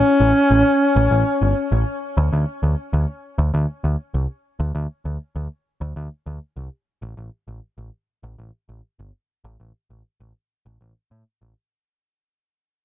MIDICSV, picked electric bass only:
0, 0, Header, 1, 2, 480
1, 0, Start_track
1, 0, Tempo, 606061
1, 1480, Time_signature, 4, 2, 24, 8
1, 10176, End_track
2, 0, Start_track
2, 0, Title_t, "Picked electric bass"
2, 0, Program_c, 0, 34
2, 160, Note_on_c, 0, 33, 74
2, 250, Note_off_c, 0, 33, 0
2, 400, Note_on_c, 0, 33, 81
2, 490, Note_off_c, 0, 33, 0
2, 760, Note_on_c, 0, 33, 93
2, 850, Note_off_c, 0, 33, 0
2, 880, Note_on_c, 0, 33, 77
2, 970, Note_off_c, 0, 33, 0
2, 1121, Note_on_c, 0, 31, 71
2, 1210, Note_off_c, 0, 31, 0
2, 1360, Note_on_c, 0, 33, 80
2, 1450, Note_off_c, 0, 33, 0
2, 1721, Note_on_c, 0, 38, 92
2, 1810, Note_off_c, 0, 38, 0
2, 1842, Note_on_c, 0, 38, 76
2, 1931, Note_off_c, 0, 38, 0
2, 2081, Note_on_c, 0, 38, 74
2, 2171, Note_off_c, 0, 38, 0
2, 2322, Note_on_c, 0, 38, 80
2, 2411, Note_off_c, 0, 38, 0
2, 2680, Note_on_c, 0, 38, 90
2, 2770, Note_off_c, 0, 38, 0
2, 2802, Note_on_c, 0, 38, 80
2, 2891, Note_off_c, 0, 38, 0
2, 3041, Note_on_c, 0, 38, 74
2, 3131, Note_off_c, 0, 38, 0
2, 3281, Note_on_c, 0, 36, 78
2, 3370, Note_off_c, 0, 36, 0
2, 3640, Note_on_c, 0, 38, 94
2, 3730, Note_off_c, 0, 38, 0
2, 3759, Note_on_c, 0, 38, 78
2, 3850, Note_off_c, 0, 38, 0
2, 4001, Note_on_c, 0, 38, 74
2, 4091, Note_off_c, 0, 38, 0
2, 4242, Note_on_c, 0, 38, 79
2, 4331, Note_off_c, 0, 38, 0
2, 4602, Note_on_c, 0, 38, 91
2, 4691, Note_off_c, 0, 38, 0
2, 4721, Note_on_c, 0, 38, 74
2, 4811, Note_off_c, 0, 38, 0
2, 4961, Note_on_c, 0, 38, 73
2, 5051, Note_off_c, 0, 38, 0
2, 5199, Note_on_c, 0, 36, 80
2, 5290, Note_off_c, 0, 36, 0
2, 5560, Note_on_c, 0, 33, 93
2, 5650, Note_off_c, 0, 33, 0
2, 5681, Note_on_c, 0, 33, 79
2, 5770, Note_off_c, 0, 33, 0
2, 5921, Note_on_c, 0, 33, 73
2, 6010, Note_off_c, 0, 33, 0
2, 6159, Note_on_c, 0, 33, 77
2, 6249, Note_off_c, 0, 33, 0
2, 6520, Note_on_c, 0, 33, 91
2, 6610, Note_off_c, 0, 33, 0
2, 6641, Note_on_c, 0, 33, 76
2, 6730, Note_off_c, 0, 33, 0
2, 6880, Note_on_c, 0, 33, 73
2, 6970, Note_off_c, 0, 33, 0
2, 7121, Note_on_c, 0, 31, 82
2, 7211, Note_off_c, 0, 31, 0
2, 7480, Note_on_c, 0, 33, 93
2, 7570, Note_off_c, 0, 33, 0
2, 7602, Note_on_c, 0, 33, 76
2, 7691, Note_off_c, 0, 33, 0
2, 7842, Note_on_c, 0, 33, 73
2, 7931, Note_off_c, 0, 33, 0
2, 8081, Note_on_c, 0, 33, 77
2, 8170, Note_off_c, 0, 33, 0
2, 8440, Note_on_c, 0, 33, 90
2, 8530, Note_off_c, 0, 33, 0
2, 8560, Note_on_c, 0, 33, 75
2, 8650, Note_off_c, 0, 33, 0
2, 8800, Note_on_c, 0, 45, 72
2, 8890, Note_off_c, 0, 45, 0
2, 9041, Note_on_c, 0, 33, 77
2, 9130, Note_off_c, 0, 33, 0
2, 10176, End_track
0, 0, End_of_file